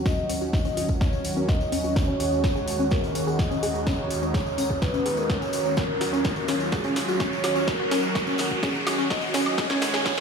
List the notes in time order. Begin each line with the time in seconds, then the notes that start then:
Already playing: D#2 D#3 F#3 C#4 F#4, riser
0.06 F#4 D#5, kick, snare, tambourine
0.29 C#4, open hi-hat, tambourine
0.41 F#4, tambourine
0.53 D#5, kick, snare, tambourine
0.65 C#4, tambourine
0.77 F#4, open hi-hat, tambourine
0.89 kick, tambourine
1.01 C#4 C#5, kick, snare, tambourine
1.13 F#4, tambourine
1.24 open hi-hat, tambourine
1.37 C#4 A#4, tambourine
1.48 F#4 D#5, kick, snare, tambourine
1.61 tambourine
1.72 C#4, open hi-hat, tambourine
1.84 F#4, tambourine
1.96 G#3 C#5, kick, snare, tambourine
2.08 C#4
2.20 G#4, open hi-hat, tambourine
2.32 tambourine
2.44 C#4 C#5, kick, snare, tambourine
2.56 G#4, tambourine
2.68 open hi-hat, tambourine
2.79 C#4, tambourine
2.91 G#4 A#4, kick, snare, tambourine
3.04 tambourine
3.15 C#4, open hi-hat, tambourine
3.27 G#4, tambourine
3.39 D#5, kick, snare, tambourine
3.51 C#4, tambourine
3.63 G#4, open hi-hat, tambourine
3.75 tambourine
3.86 C#4 D#4 C#5, kick, snare, tambourine
3.99 G#4
4.10 open hi-hat, tambourine
4.22 C#4, tambourine
4.34 G#4 C#5, kick, snare, tambourine
4.46 tambourine
4.58 C#4, open hi-hat, tambourine
4.70 G#4, kick, tambourine
4.82 B4, kick, snare, tambourine
4.94 C#4, tambourine
5.06 G#4, open hi-hat, tambourine
5.17 A#4 C#5, tambourine
5.29 F#4 C#5, kick, snare, tambourine
5.41 G#4, tambourine
5.53 open hi-hat, tambourine
5.65 C#4, tambourine
5.77 F#3 C#4 F4 A#4, kick, snare, tambourine
6.01 F#4, snare, open hi-hat, tambourine
6.13 C#4, tambourine
6.24 A#4, kick, snare, tambourine
6.36 F#4, tambourine
6.48 C#4, snare, open hi-hat, tambourine
6.60 tambourine
6.72 F#4 G#4, kick, snare, tambourine
6.84 C#4, tambourine
6.96 snare, open hi-hat, tambourine
7.08 F#4, tambourine
7.20 C#4 C#5, kick, snare, tambourine
7.33 tambourine
7.44 F#4, snare, open hi-hat, tambourine, high woodblock
7.55 C#4, tambourine
7.67 F#4 A#4, kick, snare, tambourine
7.80 F#4
7.91 C#4, snare, open hi-hat, tambourine
8.03 tambourine
8.15 F#4 A#4, kick, snare, tambourine
8.27 C#4, tambourine
8.38 snare, open hi-hat, tambourine
8.51 F#4, kick, tambourine
8.63 C#4 G#4, kick, snare, tambourine
8.75 tambourine
8.87 F#4, snare, open hi-hat, tambourine, high woodblock
8.99 C#4 F#4, tambourine
9.10 D#5, kick, snare, tambourine
9.22 F#4, tambourine
9.34 C#4, snare, open hi-hat, tambourine
9.46 tambourine, high woodblock
9.58 D#2 D#3 G#3 F#4 G#4 C#5, kick, snare, tambourine
9.70 C#4, snare
9.82 snare, open hi-hat, tambourine
9.94 G#4, snare, tambourine
10.06 C#4 C#5, kick, snare, tambourine
10.17 tambourine